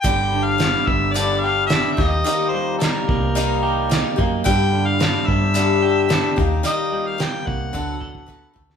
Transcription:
0.02 fingered electric bass G1, steel-string acoustic guitar G2 D3 G3 B3 D4, harmonica G5, kick, closed hi-hat
0.06 steel-string acoustic guitar G4
0.32 clean electric guitar D3
0.45 harmonica F5
0.58 steel-string acoustic guitar G3 B3 D4 G4, snare, closed hi-hat
0.86 fingered electric bass G1, clean electric guitar B3, harmonica E5, kick
1.13 steel-string acoustic guitar G2 D3 G3 B3 D4 G4, harmonica D5, closed hi-hat
1.40 clean electric guitar G4, harmonica F5
1.67 steel-string acoustic guitar G3 B3, harmonica E5, snare, closed hi-hat
1.71 steel-string acoustic guitar D4 G4
1.93 harmonica E5
1.97 fingered electric bass D#2, clean electric guitar D#3, steel-string acoustic guitar A#3 D#4 G4, kick, snare
2.04 harmonica D#5
2.24 steel-string acoustic guitar D#3 G3 A#3 D#4 G4, closed hi-hat
2.50 harmonica C5
2.54 clean electric guitar G3
2.79 steel-string acoustic guitar G3 A#3, harmonica A#4, snare, closed hi-hat
2.83 steel-string acoustic guitar D#4 G4
3.08 fingered electric bass C2, clean electric guitar A#3, kick
3.35 steel-string acoustic guitar D#3 G3 A#3 D#4 G4, closed hi-hat
3.63 clean electric guitar G4
3.90 steel-string acoustic guitar G3 A#3 D#4 G4, snare, closed hi-hat
4.16 fingered electric bass F#2, steel-string acoustic guitar A#3 D#4 G4, kick
4.44 steel-string acoustic guitar G2 D3 G3 B3 D4 G4, fingered electric bass G2, harmonica G5, kick, closed hi-hat
4.73 clean electric guitar D3
4.87 harmonica F5
4.99 steel-string acoustic guitar G3 B3 D4 G4, snare, closed hi-hat
5.27 fingered electric bass G2, clean electric guitar B3, harmonica E5, kick
5.54 steel-string acoustic guitar G2 D3 G3 B3 D4 G4, closed hi-hat
5.83 clean electric guitar G4
6.09 steel-string acoustic guitar G3 B3 D4 G4, snare, closed hi-hat
6.36 fingered electric bass D#2, clean electric guitar D#3, steel-string acoustic guitar A#3 D#4 G4, kick
6.63 steel-string acoustic guitar D#3 G3 A#3 D#4 G4, harmonica D#5, closed hi-hat
6.92 clean electric guitar G3
7.07 harmonica F5
7.18 steel-string acoustic guitar G3 A#3 D#4 G4, harmonica G5, snare, closed hi-hat
7.45 fingered electric bass C2, clean electric guitar A#3, harmonica F#5, kick
7.73 fingered electric bass D2, steel-string acoustic guitar D3 F#3 B3 F#4 A4, kick
8.00 clean electric guitar A4, kick
8.15 kick
8.26 steel-string acoustic guitar F#3 B3 F#4 A4, kick
8.53 fingered electric bass D2, clean electric guitar A3, steel-string acoustic guitar B3 F#4 A4, kick
8.70 snare

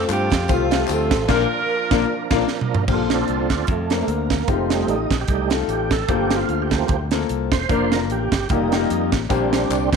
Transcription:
Already playing: tonewheel organ F3 A3 C4 A4, upright piano A3 C4 F4 A4, saxophone section F4
0.09 fingered electric bass G2, saxophone section C4 G4, clap, closed hi-hat, tambourine
0.30 fingered electric bass F2, kick, snare, closed hi-hat, tambourine
0.48 fingered electric bass C2, upright piano A3 C4 F4 G4, saxophone section A3 C4 F4, kick, closed hi-hat, tambourine
0.71 upright piano A3 C4 F4 G4, snare, closed hi-hat, tambourine
0.88 fingered electric bass D2, saxophone section C4 F4 A4, clap, closed hi-hat, tambourine
1.11 fingered electric bass A1, kick, snare, closed hi-hat, tambourine
1.28 fingered electric bass A#1, upright piano A#2 A#3 D4 F4, tonewheel organ F3 A#3 D4 A#4, saxophone section D4 F4 A#4, kick, snare, crash
1.35 upright piano A#4
1.91 fingered electric bass A#1, upright piano A#3 D4 F4 A#4, kick, snare
2.30 fingered electric bass A#1, upright piano A#3 F4 A#4, kick, snare, crash
2.35 upright piano D4
2.48 snare
2.61 mid tom
2.75 floor tom
2.88 fingered electric bass A#1, upright piano A#2 A#3 C4 D4 G4, tonewheel organ F4, kick, crash
2.94 upright piano A4
3.10 tonewheel organ C4 D4 A4, snare, closed hi-hat
3.28 fingered electric bass C2, closed hi-hat
3.50 fingered electric bass D2, kick, snare, closed hi-hat
3.67 fingered electric bass F2, kick, closed hi-hat
3.71 tonewheel organ A3
3.90 upright piano A#3 C4 C#4 A#4, snare, closed hi-hat
3.96 upright piano D4
4.07 fingered electric bass D2, tonewheel organ A#3, closed hi-hat
4.30 kick, snare, closed hi-hat
4.48 fingered electric bass F1, upright piano G#3 D#4 F4 G4, tonewheel organ C4, kick, closed hi-hat
4.52 upright piano A3
4.70 tonewheel organ G3 A3 D#4, snare, closed hi-hat
4.88 fingered electric bass A1, tonewheel organ D#4, closed hi-hat
5.10 fingered electric bass A#1, kick, snare, closed hi-hat
5.21 tonewheel organ G4
5.28 fingered electric bass C2, tonewheel organ G3 A3 D#4, kick, closed hi-hat
5.50 upright piano A3 D#4 F4 A4, snare, closed hi-hat
5.68 fingered electric bass A1, tonewheel organ G4, closed hi-hat
5.91 tonewheel organ A4, kick, snare, closed hi-hat
6.08 fingered electric bass G1, upright piano G2 A#3 C4 F4 A4, tonewheel organ G4, kick, closed hi-hat
6.31 snare, closed hi-hat
6.36 tonewheel organ F4
6.48 fingered electric bass D2, closed hi-hat
6.62 tonewheel organ G4
6.70 tonewheel organ F3 A3 A#3 C4, kick, snare, closed hi-hat
6.88 fingered electric bass D2, kick, closed hi-hat
7.11 upright piano A#3 C4 F4 A4, snare, closed hi-hat
7.29 fingered electric bass C2, closed hi-hat
7.52 fingered electric bass E1, tonewheel organ C5, kick, snare, closed hi-hat
7.69 fingered electric bass F1, tonewheel organ F3 A#3 D4 C5, upright piano A#3 D4 F4 A#4, kick, closed hi-hat
7.92 tonewheel organ A#4, snare, closed hi-hat
8.10 fingered electric bass A1, tonewheel organ G4, closed hi-hat
8.32 fingered electric bass G1, kick, snare, closed hi-hat
8.49 fingered electric bass F1, tonewheel organ G3 A#3 D#4, upright piano A#3 D#4 F4 G4, kick, closed hi-hat
8.72 upright piano A3 D#4 F4 G4, snare, closed hi-hat
8.77 upright piano A#3
8.90 fingered electric bass F2, closed hi-hat
9.12 fingered electric bass A1, kick, snare, closed hi-hat
9.29 fingered electric bass A#1, upright piano A#2 A#3 C4 D4 G4, tonewheel organ G3 C4 D4, kick, closed hi-hat, tambourine
9.53 snare, closed hi-hat, tambourine
9.70 fingered electric bass C2, clap, closed hi-hat, tambourine
9.92 fingered electric bass D#2, kick, snare, closed hi-hat, tambourine

